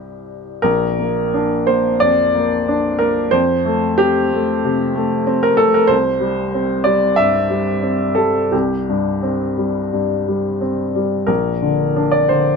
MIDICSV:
0, 0, Header, 1, 2, 480
1, 0, Start_track
1, 0, Tempo, 706714
1, 443, Time_signature, 4, 2, 24, 8
1, 912, Tempo, 673401
1, 1872, Tempo, 655022
1, 3312, Tempo, 638298
1, 5712, Tempo, 688863
1, 8112, Tempo, 670391
1, 9024, End_track
2, 0, Start_track
2, 0, Title_t, "Upright piano"
2, 0, Program_c, 0, 0
2, 0, Control_c, 0, 64, 127
2, 0, Note_on_c, 0, 36, 39
2, 0, Note_on_c, 0, 55, 30
2, 0, Note_on_c, 0, 60, 29
2, 0, Note_on_c, 0, 64, 29
2, 392, Note_off_c, 0, 36, 0
2, 398, Note_off_c, 0, 55, 0
2, 402, Note_off_c, 0, 60, 0
2, 407, Note_off_c, 0, 64, 0
2, 423, Note_on_c, 0, 70, 75
2, 433, Note_on_c, 0, 34, 52
2, 456, Control_c, 0, 64, 0
2, 569, Control_c, 0, 64, 127
2, 676, Note_on_c, 0, 58, 39
2, 909, Note_on_c, 0, 62, 46
2, 1054, Note_off_c, 0, 58, 0
2, 1142, Note_off_c, 0, 70, 0
2, 1143, Note_on_c, 0, 72, 72
2, 1152, Note_on_c, 0, 58, 42
2, 1296, Note_off_c, 0, 62, 0
2, 1360, Note_off_c, 0, 34, 0
2, 1381, Note_on_c, 0, 74, 81
2, 1389, Note_off_c, 0, 72, 0
2, 1393, Note_on_c, 0, 41, 47
2, 1538, Note_off_c, 0, 58, 0
2, 1631, Note_on_c, 0, 58, 43
2, 1777, Note_off_c, 0, 41, 0
2, 1867, Note_on_c, 0, 62, 50
2, 2014, Note_off_c, 0, 58, 0
2, 2089, Note_on_c, 0, 70, 73
2, 2100, Note_on_c, 0, 58, 43
2, 2105, Note_off_c, 0, 74, 0
2, 2251, Note_off_c, 0, 62, 0
2, 2327, Note_on_c, 0, 72, 83
2, 2334, Note_on_c, 0, 41, 60
2, 2338, Note_off_c, 0, 70, 0
2, 2343, Note_off_c, 0, 58, 0
2, 2363, Control_c, 0, 64, 0
2, 2493, Control_c, 0, 64, 127
2, 2578, Note_on_c, 0, 57, 48
2, 2815, Note_on_c, 0, 67, 82
2, 2820, Note_on_c, 0, 60, 49
2, 2821, Note_off_c, 0, 72, 0
2, 2972, Note_off_c, 0, 57, 0
2, 3078, Note_on_c, 0, 57, 47
2, 3212, Note_off_c, 0, 60, 0
2, 3276, Note_off_c, 0, 41, 0
2, 3307, Note_on_c, 0, 48, 55
2, 3459, Note_off_c, 0, 57, 0
2, 3536, Note_on_c, 0, 57, 45
2, 3690, Note_off_c, 0, 48, 0
2, 3773, Note_on_c, 0, 60, 52
2, 3894, Note_on_c, 0, 70, 75
2, 3895, Note_off_c, 0, 67, 0
2, 3919, Note_off_c, 0, 57, 0
2, 4001, Note_on_c, 0, 69, 77
2, 4013, Note_on_c, 0, 57, 47
2, 4016, Note_off_c, 0, 70, 0
2, 4129, Note_off_c, 0, 69, 0
2, 4130, Note_on_c, 0, 70, 72
2, 4156, Note_off_c, 0, 60, 0
2, 4229, Note_on_c, 0, 72, 84
2, 4240, Note_on_c, 0, 36, 57
2, 4253, Note_off_c, 0, 70, 0
2, 4254, Note_off_c, 0, 57, 0
2, 4272, Control_c, 0, 64, 0
2, 4378, Control_c, 0, 64, 127
2, 4476, Note_on_c, 0, 55, 46
2, 4732, Note_on_c, 0, 60, 46
2, 4875, Note_off_c, 0, 55, 0
2, 4955, Note_on_c, 0, 74, 70
2, 4966, Note_on_c, 0, 55, 43
2, 4970, Note_off_c, 0, 72, 0
2, 5126, Note_off_c, 0, 60, 0
2, 5189, Note_off_c, 0, 36, 0
2, 5198, Note_on_c, 0, 76, 78
2, 5213, Note_off_c, 0, 74, 0
2, 5214, Note_on_c, 0, 43, 43
2, 5363, Note_off_c, 0, 55, 0
2, 5451, Note_on_c, 0, 55, 41
2, 5608, Note_off_c, 0, 43, 0
2, 5699, Note_on_c, 0, 60, 42
2, 5846, Note_off_c, 0, 55, 0
2, 5922, Note_on_c, 0, 69, 61
2, 5933, Note_on_c, 0, 55, 39
2, 5935, Note_off_c, 0, 76, 0
2, 6086, Note_off_c, 0, 60, 0
2, 6176, Note_off_c, 0, 69, 0
2, 6180, Note_on_c, 0, 67, 47
2, 6184, Note_on_c, 0, 36, 46
2, 6202, Control_c, 0, 64, 0
2, 6316, Control_c, 0, 64, 127
2, 6326, Note_off_c, 0, 55, 0
2, 6442, Note_on_c, 0, 43, 37
2, 6674, Note_on_c, 0, 60, 36
2, 6823, Note_off_c, 0, 43, 0
2, 6919, Note_on_c, 0, 55, 33
2, 7061, Note_off_c, 0, 60, 0
2, 7126, Note_off_c, 0, 36, 0
2, 7164, Note_on_c, 0, 43, 37
2, 7304, Note_off_c, 0, 55, 0
2, 7407, Note_on_c, 0, 55, 35
2, 7545, Note_off_c, 0, 43, 0
2, 7631, Note_off_c, 0, 67, 0
2, 7639, Note_on_c, 0, 60, 38
2, 7783, Note_off_c, 0, 55, 0
2, 7877, Note_on_c, 0, 55, 37
2, 8019, Note_off_c, 0, 60, 0
2, 8095, Note_on_c, 0, 70, 63
2, 8103, Note_on_c, 0, 34, 49
2, 8114, Note_off_c, 0, 55, 0
2, 8128, Control_c, 0, 64, 0
2, 8270, Control_c, 0, 64, 127
2, 8348, Note_on_c, 0, 50, 40
2, 8593, Note_on_c, 0, 62, 41
2, 8702, Note_on_c, 0, 74, 60
2, 8706, Note_off_c, 0, 70, 0
2, 8735, Note_off_c, 0, 50, 0
2, 8826, Note_on_c, 0, 72, 60
2, 8828, Note_off_c, 0, 74, 0
2, 8835, Note_on_c, 0, 50, 37
2, 8976, Note_off_c, 0, 62, 0
2, 9024, Note_off_c, 0, 34, 0
2, 9024, Note_off_c, 0, 50, 0
2, 9024, Note_off_c, 0, 72, 0
2, 9024, End_track
0, 0, End_of_file